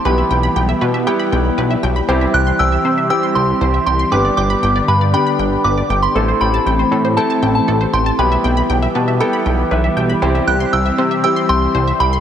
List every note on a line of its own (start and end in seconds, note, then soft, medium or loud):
0.00 4.08 E3 medium
0.00 2.05 G4 medium
0.05 0.23 B1 loud
0.05 6.11 G3 medium
0.05 0.91 G3 medium
0.05 2.07 B3 medium
0.05 0.91 B3 medium
0.05 0.91 E4 medium
0.05 0.91 G4 medium
0.05 0.17 B4 medium
0.05 0.53 B5 medium
0.18 0.30 E5 medium
0.31 0.48 B1 loud
0.31 0.43 G5 medium
0.43 0.55 B5 medium
0.56 0.74 B1 medium
0.56 0.68 G5 medium
0.69 0.81 E5 medium
0.81 1.08 B2 loud
0.81 0.93 B4 medium
0.94 1.06 E5 medium
1.07 1.93 G3 medium
1.07 1.93 B3 medium
1.07 1.93 E4 medium
1.07 1.93 G4 medium
1.07 1.19 G5 medium
1.19 1.31 B5 medium
1.32 1.50 B1 loud
1.32 1.44 G5 medium
1.58 1.76 B1 medium
1.58 1.70 B4 medium
1.71 1.82 E5 medium
1.83 2.01 B1 loud
1.83 1.95 G5 medium
1.96 2.08 B5 medium
2.08 2.26 C2 loud
2.08 2.95 G3 medium
2.08 2.95 C4 medium
2.08 4.10 C4 medium
2.08 2.95 E4 medium
2.08 2.95 G4 loud
2.08 8.15 G4 medium
2.08 2.21 C5 medium
2.21 2.33 E5 medium
2.34 2.52 C2 loud
2.34 2.46 G5 medium
2.34 2.60 F#6 loud
2.47 2.59 C6 medium
2.59 2.77 C2 loud
2.59 2.71 G5 medium
2.59 3.09 E6 medium
2.72 2.84 E5 medium
2.85 3.11 C3 medium
2.85 2.97 C5 medium
2.98 3.10 E5 medium
3.10 3.96 G3 medium
3.10 3.96 C4 medium
3.10 3.96 E4 medium
3.10 3.96 G4 medium
3.10 3.22 G5 medium
3.10 3.34 E6 loud
3.23 3.35 C6 medium
3.35 3.53 C2 loud
3.35 3.48 G5 medium
3.35 3.85 C6 medium
3.61 3.79 C2 loud
3.61 3.73 C5 medium
3.74 3.86 E5 medium
3.86 4.04 C2 medium
3.86 3.99 G5 medium
3.86 4.10 C6 medium
3.99 4.11 C6 medium
4.12 4.30 G1 loud
4.12 6.13 D3 medium
4.12 4.98 G3 medium
4.12 4.98 B3 medium
4.12 6.13 B3 medium
4.12 4.98 D4 medium
4.12 4.98 G4 medium
4.12 4.24 B4 medium
4.12 4.36 D6 medium
4.25 4.37 D5 medium
4.37 4.55 G1 medium
4.37 4.49 G5 medium
4.37 4.90 D6 medium
4.50 4.62 B5 medium
4.63 4.81 G1 loud
4.63 4.75 G5 medium
4.76 4.88 D5 medium
4.88 5.15 G2 loud
4.88 5.00 B4 medium
4.88 5.12 B5 medium
5.01 5.13 D5 medium
5.13 6.00 G3 medium
5.13 6.00 B3 medium
5.13 6.00 D4 medium
5.13 6.00 G4 medium
5.13 5.26 G5 medium
5.13 5.61 B5 medium
5.27 5.38 B5 medium
5.39 5.57 G1 loud
5.39 5.51 G5 medium
5.64 5.82 G1 loud
5.64 5.77 B4 medium
5.64 6.04 D6 medium
5.77 5.89 D5 medium
5.90 6.08 G1 medium
5.90 6.02 G5 medium
6.02 6.15 B5 medium
6.02 6.42 C6 medium
6.15 6.33 A1 loud
6.15 12.20 E3 medium
6.15 8.17 A3 medium
6.15 7.01 A3 medium
6.15 8.17 C4 medium
6.15 7.01 C4 medium
6.15 7.01 E4 medium
6.15 7.01 A4 medium
6.15 6.27 A4 medium
6.28 6.40 C5 medium
6.41 6.59 A1 loud
6.41 6.53 G5 medium
6.41 7.13 B5 medium
6.54 6.66 A5 medium
6.66 6.84 A1 medium
6.66 6.78 G5 medium
6.79 6.91 C5 medium
6.91 7.18 A2 loud
6.91 7.04 A4 medium
7.05 7.16 C5 medium
7.17 8.03 A3 medium
7.17 8.03 C4 medium
7.17 8.03 E4 medium
7.17 8.03 A4 medium
7.17 7.29 G5 medium
7.17 7.54 A5 medium
7.30 7.42 A5 medium
7.43 7.60 A1 loud
7.43 7.54 G5 medium
7.55 7.94 A5 medium
7.68 7.86 A1 loud
7.68 7.80 A4 medium
7.81 7.93 C5 medium
7.93 8.11 A1 loud
7.93 8.05 G5 medium
7.93 8.20 C6 medium
8.06 8.18 A5 medium
8.19 8.37 B1 loud
8.19 9.05 G3 medium
8.19 12.20 G3 medium
8.19 9.05 B3 medium
8.19 10.20 B3 medium
8.19 9.05 E4 medium
8.19 9.05 G4 medium
8.19 12.20 G4 medium
8.19 8.31 B4 medium
8.19 8.66 B5 medium
8.32 8.44 E5 medium
8.44 8.62 B1 loud
8.44 8.56 G5 medium
8.57 8.69 B5 medium
8.70 8.87 B1 loud
8.70 8.82 G5 medium
8.82 8.94 E5 medium
8.95 9.22 B2 loud
8.95 9.07 B4 medium
8.95 9.19 A5 medium
9.08 9.20 E5 medium
9.20 10.06 G3 medium
9.20 10.06 B3 medium
9.20 10.06 E4 medium
9.20 10.06 A4 medium
9.20 9.32 G5 medium
9.20 9.68 G5 medium
9.33 9.45 B5 medium
9.46 9.64 B1 medium
9.46 9.58 G5 medium
9.71 9.89 B1 medium
9.71 9.83 B4 medium
9.71 10.19 E5 medium
9.84 9.96 E5 medium
9.97 10.14 B1 loud
9.97 10.09 G5 medium
10.09 10.21 B5 medium
10.22 10.40 C2 loud
10.22 11.08 G3 medium
10.22 11.08 C4 medium
10.22 12.20 C4 medium
10.22 11.08 E4 medium
10.22 11.08 G4 loud
10.22 10.34 C5 medium
10.35 10.47 E5 medium
10.47 10.65 C2 loud
10.47 10.60 G5 medium
10.47 10.74 F#6 loud
10.60 10.72 C6 medium
10.73 10.91 C2 medium
10.73 10.85 G5 medium
10.73 11.20 E6 loud
10.86 10.98 E5 medium
10.98 11.25 C3 loud
10.98 11.10 C5 medium
11.11 11.23 E5 medium
11.24 12.10 G3 medium
11.24 12.10 C4 medium
11.24 12.10 E4 medium
11.24 12.10 G4 medium
11.24 11.36 G5 medium
11.24 11.50 E6 loud
11.36 11.48 C6 medium
11.49 11.67 C2 loud
11.49 11.61 G5 medium
11.49 12.02 C6 loud
11.75 11.93 C2 medium
11.75 11.87 C5 medium
11.88 11.99 E5 medium
12.00 12.18 C2 medium
12.00 12.12 G5 medium
12.00 12.20 B5 medium
12.13 12.20 C6 medium